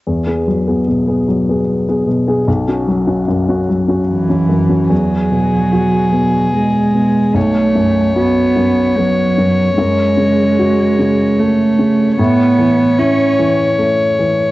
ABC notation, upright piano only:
X:1
M:3/4
L:1/16
Q:1/4=74
K:E
V:1 name="Upright piano"
E,, [B,G] F, [B,G] B,, [B,G] F, [B,G]2 [B,G] B,, [B,G] | B,,, [CF] F, [CF] F,, [CF] F, [CF]2 [CF] F,, [CF] | E,,2 B,,2 F2 B,,2 G,2 B,,2 | B,,,2 F,,2 F2 F,,2 B,2 F,,2 |
F,,2 C,2 F2 C,2 A,2 C,2 | A,,2 E,2 E2 E,2 A,2 E,2 |]